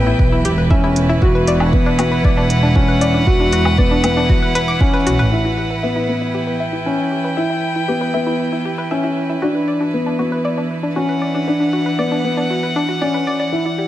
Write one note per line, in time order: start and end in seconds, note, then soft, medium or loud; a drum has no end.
0.00 0.14 A1 medium
0.00 9.41 E3 medium
0.00 0.39 B3 medium
0.00 13.53 E4 medium
0.00 13.52 B4 medium
0.00 1.22 G5 medium
0.07 0.12 E4 medium
0.19 0.40 B1 medium
0.19 kick medium
0.32 0.38 E4 medium
0.45 1.18 E1 medium
0.45 0.54 G4 medium
0.45 closed hi-hat medium
0.58 0.67 B4 medium
0.70 1.16 C#4 medium
0.70 0.79 E5 medium
0.70 kick loud
0.84 0.89 E4 medium
0.96 closed hi-hat medium
1.09 1.15 E4 medium
1.22 1.95 E1 medium
1.22 1.67 F#4 medium
1.22 1.31 F#4 medium
1.22 kick loud
1.35 1.44 B4 medium
1.47 1.57 D5 medium
1.47 closed hi-hat medium
1.59 1.66 D4 medium
1.59 6.55 F#5 medium
1.59 low woodblock medium
1.73 1.96 B3 medium
1.73 kick medium
1.86 1.91 D4 medium
1.99 2.44 B3 medium
1.99 2.08 F#4 medium
1.99 closed hi-hat medium
1.99 low woodblock medium
2.12 2.20 B4 medium
2.24 3.23 E1 medium
2.24 2.33 D5 medium
2.24 kick medium
2.37 2.43 D4 medium
2.50 closed hi-hat medium
2.63 2.68 D4 medium
2.75 3.21 C#4 medium
2.75 2.84 F#4 medium
2.75 kick loud
2.88 2.97 B4 medium
3.01 3.10 D5 medium
3.01 closed hi-hat medium
3.14 3.19 D4 medium
3.27 4.25 E1 loud
3.27 3.72 F#4 medium
3.27 kick medium
3.40 3.45 D4 medium
3.53 3.62 F#4 medium
3.53 closed hi-hat medium
3.65 3.74 B4 medium
3.65 low woodblock medium
3.78 4.01 B3 medium
3.78 3.87 D5 medium
3.78 kick medium
3.91 3.96 D4 medium
4.04 4.49 B3 medium
4.04 closed hi-hat medium
4.04 low woodblock medium
4.17 4.22 D4 medium
4.29 4.38 F#4 medium
4.29 kick loud
4.42 4.51 B4 medium
4.55 4.67 B4 loud
4.55 closed hi-hat medium
4.68 4.73 D6 medium
4.81 5.26 C#4 medium
4.81 kick loud
4.94 5.02 B4 medium
5.06 5.17 B1 medium
5.06 5.12 F#4 medium
5.06 closed hi-hat medium
5.19 5.30 A1 medium
5.19 5.28 B4 medium
5.32 5.77 E4 medium
5.45 5.50 E4 medium
5.58 5.67 G4 medium
5.71 5.79 B4 medium
5.83 6.06 B3 medium
5.83 5.92 E5 medium
5.96 6.01 E4 medium
6.09 6.54 B3 medium
6.22 6.27 E4 medium
6.32 6.43 G4 medium
6.32 9.42 G5 medium
6.47 6.56 B4 medium
6.60 6.69 E5 medium
6.73 6.78 E4 medium
6.86 7.31 C#4 medium
6.99 7.04 E4 medium
7.12 7.20 G4 medium
7.24 7.33 B4 medium
7.37 7.83 E4 medium
7.37 7.46 E5 medium
7.50 7.55 E4 medium
7.76 7.81 E4 medium
7.88 8.11 B3 medium
7.88 7.97 G4 medium
8.01 8.10 B4 medium
8.14 8.60 B3 medium
8.14 8.23 E5 medium
8.27 8.32 E4 medium
8.53 8.58 E4 medium
8.65 8.74 G4 medium
8.78 8.87 B4 medium
8.91 9.37 C#4 medium
8.91 9.00 E5 medium
9.04 9.09 E4 medium
9.30 9.35 E4 medium
9.42 13.88 E3 medium
9.42 9.88 D4 medium
9.42 9.51 F#4 medium
9.55 9.64 B4 medium
9.68 9.77 D5 medium
9.80 9.86 D4 medium
9.94 10.16 B3 medium
10.06 10.12 D4 medium
10.19 10.65 B3 medium
10.19 10.28 F#4 medium
10.32 10.41 B4 medium
10.45 10.54 D5 medium
10.58 10.63 D4 medium
10.83 10.89 D4 medium
10.96 11.42 C#4 medium
10.96 11.05 F#4 medium
10.96 13.88 F#5 medium
11.09 11.18 B4 medium
11.22 11.31 D5 medium
11.35 11.40 D4 medium
11.47 11.93 D4 medium
11.60 11.66 D4 medium
11.73 11.82 F#4 medium
11.86 11.95 B4 medium
11.99 12.21 B3 medium
11.99 12.08 D5 medium
12.12 12.17 D4 medium
12.24 12.70 B3 medium
12.37 12.43 D4 medium
12.50 12.59 F#4 medium
12.63 12.72 B4 medium
12.76 12.81 D4 medium
12.89 12.94 F#4 medium
13.01 13.47 C#4 medium
13.01 13.10 D5 medium
13.14 13.26 B4 medium
13.27 13.32 D5 medium
13.40 13.49 D5 medium
13.52 13.88 E4 medium
13.65 13.71 E4 medium
13.78 13.88 E4 medium
13.78 13.87 G4 medium